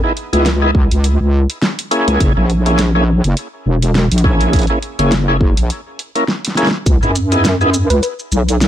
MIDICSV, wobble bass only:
0, 0, Header, 1, 2, 480
1, 0, Start_track
1, 0, Tempo, 582524
1, 1815, Time_signature, 4, 2, 24, 8
1, 7150, End_track
2, 0, Start_track
2, 0, Title_t, "Wobble bass"
2, 0, Program_c, 0, 39
2, 273, Note_on_c, 0, 37, 94
2, 730, Note_off_c, 0, 37, 0
2, 752, Note_on_c, 0, 37, 94
2, 970, Note_off_c, 0, 37, 0
2, 992, Note_on_c, 0, 37, 96
2, 1210, Note_off_c, 0, 37, 0
2, 1713, Note_on_c, 0, 37, 93
2, 1800, Note_off_c, 0, 37, 0
2, 1816, Note_on_c, 0, 30, 96
2, 1929, Note_off_c, 0, 30, 0
2, 1953, Note_on_c, 0, 34, 96
2, 2650, Note_off_c, 0, 34, 0
2, 2673, Note_on_c, 0, 30, 96
2, 2760, Note_off_c, 0, 30, 0
2, 3016, Note_on_c, 0, 28, 94
2, 3369, Note_off_c, 0, 28, 0
2, 3391, Note_on_c, 0, 34, 96
2, 3849, Note_off_c, 0, 34, 0
2, 4112, Note_on_c, 0, 30, 94
2, 4570, Note_off_c, 0, 30, 0
2, 4591, Note_on_c, 0, 34, 95
2, 4695, Note_off_c, 0, 34, 0
2, 5655, Note_on_c, 0, 37, 97
2, 5769, Note_off_c, 0, 37, 0
2, 5792, Note_on_c, 0, 42, 97
2, 6490, Note_off_c, 0, 42, 0
2, 6510, Note_on_c, 0, 37, 94
2, 6598, Note_off_c, 0, 37, 0
2, 6855, Note_on_c, 0, 35, 95
2, 7150, Note_off_c, 0, 35, 0
2, 7150, End_track
0, 0, End_of_file